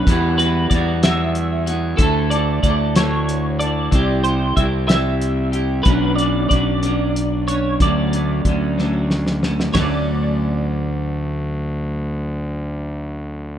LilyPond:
<<
  \new Staff \with { instrumentName = "Clean electric guitar" } { \time 6/8 \key d \major \tempo 4. = 62 b'8 b'8 d''8 e''4 r8 | a'8 d''8 d''8 cis''4 d''8~ | d''8 c''8 e''8 e''4 r8 | b'8 d''8 d''4. cis''8 |
d''2 r4 | d''2.~ | d''2. | }
  \new Staff \with { instrumentName = "Clean electric guitar" } { \time 6/8 \key d \major <g b e' fis'>8 <b e' fis'>8 <g b e' fis'>8 <g b e' fis'>4 <b e' fis'>8 | <a e' a'>8 <e' a'>8 <a e' a'>8 <a e' a'>4 <e' a'>8 | <c' e' g'>8 <e' g'>8 <c' e' g'>8 <c' e' g'>4 <e' g'>8 | <fis cis' d'>8 <cis' d'>8 <fis cis' d'>8 <fis cis' d'>4 <cis' d'>8 |
<fis a cis'>8 <a cis'>8 <fis a cis'>8 <fis a cis'>4 <a cis'>8 | <fis a cis'>2.~ | <fis a cis'>2. | }
  \new Staff \with { instrumentName = "Fingered electric bass" } { \clef bass \time 6/8 \key d \major e,4 e,2 | d,4 d,2 | c,4 c,2 | b,,4 b,,2 |
d,4 d,2 | d,2.~ | d,2. | }
  \new DrumStaff \with { instrumentName = "Drums" } \drummode { \time 6/8 <hh bd>8 hh8 <hh bd>8 <hh sn>8 hh8 hh8 | <hh bd>8 hh8 <hh bd>8 <hh sn>8 hh8 hh8 | <hh bd>8 hh8 <hh bd>8 <hh sn>8 hh8 hh8 | <hh bd>8 hh8 <hh bd>8 hh8 hh8 hh8 |
<hh bd>8 hh8 <hh bd>8 sn8 sn16 sn16 sn16 sn16 | <rb sn tomfh>4. r4. | r4. r4. | }
>>